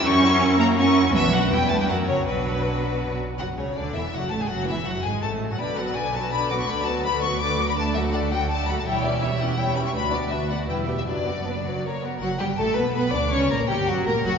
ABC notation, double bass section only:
X:1
M:3/4
L:1/16
Q:1/4=164
K:Bm
V:1 name="Double bass section" clef=bass
F,,12 | B,,,4 E,,4 F,,4 | B,,,8- B,,,2 z2 | [K:F#m] F,,,2 C,,2 D,,2 E,,,2 F,,,2 A,,, z |
F,,,2 E,,,2 F,,,2 G,,,2 A,,,3 z | B,,,12 | D,,12- | [K:Bm] D,,12 |
E,,,12 | D,,8 E,,,4 | F,,,8- F,,,2 z2 | F,,,2 G,,,2 A,,,2 B,,,2 B,,,2 D,,2 |
C,,2 ^A,,,2 G,,,2 F,,,2 A,,,2 F,,,2 |]